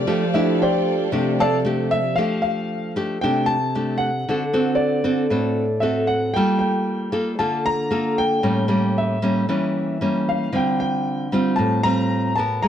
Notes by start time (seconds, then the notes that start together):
Already playing: A3 F4 A4 C5 D5
0.05 F3 A3 D4 G4 A4
0.09 C5 F5
0.34 A3 D4 E4 G4 E5
0.62 G4 C5 D5 G5
1.12 C3 A3 D4 G4
1.40 A4 D5 F5 A5
1.65 A3 D4 G4
1.89 F3 G4 A4 C5 D5 E5
2.16 F3 A3 D4 G4 F5
2.42 F5
2.96 A3 D4 G4
3.21 C3 A3 D4 G4 G5
3.46 A5
3.75 A3 D4 G4
3.98 F#5
4.29 D3 C4 F#4 A4
4.53 C4 F#4 A4
4.75 D5
5.04 C4 F#4 A4
5.30 A2 C4 F#4 A4
5.80 C4 F#4 A4 E5
6.07 F#5
6.34 G3 A#3 F4 A4 G5
6.59 G5
7.12 A#3 F4 A4
7.39 D3 A#3 F4 A4 A5
7.66 A#5
7.91 A#3 F4 A4
8.18 G5
8.43 A2 G3 A#3 C#4
8.68 G3 A#3 C#4
8.98 E5
9.22 G3 A#3 C#4
9.49 E3 G3 A#3 C#4
10.01 G3 A#3 C#4
10.29 F5
10.52 D3 G3 C4 F4 G5
10.80 G5
11.32 G3 C4 F4
11.56 A2 A5
11.83 G3 C4 F4 A#5
12.36 B3 F#4 A#4 A5
12.62 G#3 A#5